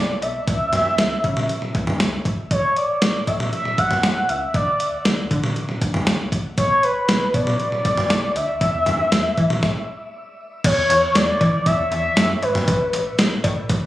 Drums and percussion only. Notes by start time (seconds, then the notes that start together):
0.22 closed hi-hat
0.48 kick, closed hi-hat
0.73 closed hi-hat, mid tom
0.98 snare, closed hi-hat
1.24 kick, closed hi-hat
1.37 mid tom
1.49 closed hi-hat
1.62 mid tom
1.75 kick, closed hi-hat
1.87 mid tom
2.00 snare, closed hi-hat
2.25 kick, closed hi-hat
2.51 kick, closed hi-hat
2.76 closed hi-hat
3.02 snare, closed hi-hat
3.27 kick, closed hi-hat
3.40 mid tom
3.53 closed hi-hat
3.65 mid tom
3.78 kick, closed hi-hat
3.91 mid tom
4.03 snare, closed hi-hat
4.29 closed hi-hat
4.54 kick, closed hi-hat
4.80 closed hi-hat
5.05 snare, closed hi-hat
5.31 kick, closed hi-hat
5.44 mid tom
5.56 closed hi-hat
5.69 mid tom
5.82 kick, closed hi-hat
5.94 mid tom
6.07 snare, closed hi-hat
6.32 kick, closed hi-hat
6.58 kick, closed hi-hat
6.83 closed hi-hat
7.09 snare, closed hi-hat
7.34 kick, closed hi-hat
7.47 mid tom
7.60 closed hi-hat
7.72 mid tom
7.85 kick, closed hi-hat
7.97 mid tom
8.10 snare, closed hi-hat
8.36 closed hi-hat
8.61 kick, closed hi-hat
8.86 closed hi-hat, mid tom
9.12 snare, closed hi-hat
9.37 kick, closed hi-hat
9.50 mid tom
9.63 kick, snare
10.64 kick, closed hi-hat, crash
10.90 closed hi-hat
11.15 snare, closed hi-hat
11.41 kick, closed hi-hat, cowbell
11.66 kick, closed hi-hat
11.92 closed hi-hat
12.17 snare, closed hi-hat
12.43 closed hi-hat
12.55 mid tom
12.68 kick, closed hi-hat
12.93 closed hi-hat
13.19 snare, closed hi-hat
13.44 kick, closed hi-hat, cowbell
13.69 kick, closed hi-hat